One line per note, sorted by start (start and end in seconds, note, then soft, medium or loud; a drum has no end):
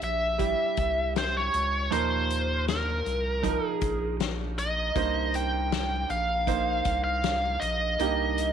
0.00 0.55 A#1 medium
0.00 1.93 G2 soft
0.00 0.32 G3 medium
0.00 0.32 E4 medium
0.00 0.32 C5 medium
0.00 1.13 E5 medium
0.00 closed hi-hat soft
0.38 1.83 G3 medium
0.38 1.83 E4 medium
0.38 1.84 G4 medium
0.38 kick medium
0.38 closed hi-hat medium
0.77 1.50 C2 medium
0.77 kick medium
0.77 closed hi-hat medium
1.16 1.37 C5 medium
1.16 snare loud
1.16 closed hi-hat medium
1.37 1.92 C#5 medium
1.54 1.89 C#2 medium
1.54 closed hi-hat medium
1.91 3.02 D#2 medium
1.91 3.02 A#2 medium
1.91 3.35 F3 medium
1.91 3.36 D#4 medium
1.91 3.36 A#4 medium
1.91 2.64 C5 medium
1.91 closed hi-hat medium
2.30 closed hi-hat medium
2.68 3.67 A#4 medium
2.68 snare loud
2.68 closed hi-hat medium
3.06 3.59 C2 medium
3.06 closed hi-hat soft
3.43 4.88 F3 medium
3.43 4.88 D#4 medium
3.43 4.88 A#4 medium
3.43 kick medium
3.43 closed hi-hat medium
3.67 4.16 G#4 medium
3.81 4.92 A#1 medium
3.81 kick medium
3.81 closed hi-hat medium
4.20 snare medium
4.20 closed hi-hat medium
4.58 5.36 D#5 medium
4.58 closed hi-hat medium
4.95 6.06 C2 loud
4.95 6.06 G2 medium
4.95 6.40 A#3 medium
4.95 6.40 D#4 medium
4.95 6.41 C5 medium
4.95 kick medium
4.95 closed hi-hat medium
5.34 6.10 G5 medium
5.34 closed hi-hat medium
5.72 snare loud
5.72 closed hi-hat medium
6.10 6.82 A#1 medium
6.10 7.01 F5 medium
6.10 closed hi-hat soft
6.47 7.92 A#3 medium
6.47 7.92 D#4 medium
6.47 7.92 C5 medium
6.47 kick medium
6.47 closed hi-hat medium
6.85 7.57 C2 medium
6.85 kick medium
6.85 closed hi-hat medium
7.04 7.63 F5 medium
7.24 snare loud
7.24 closed hi-hat medium
7.60 7.97 A#1 medium
7.60 8.53 D#5 medium
7.60 closed hi-hat medium
7.99 8.53 C2 medium
7.99 8.53 G2 medium
7.99 8.53 A#3 medium
7.99 8.53 D#4 medium
7.99 8.53 G4 medium
7.99 closed hi-hat medium
8.38 closed hi-hat medium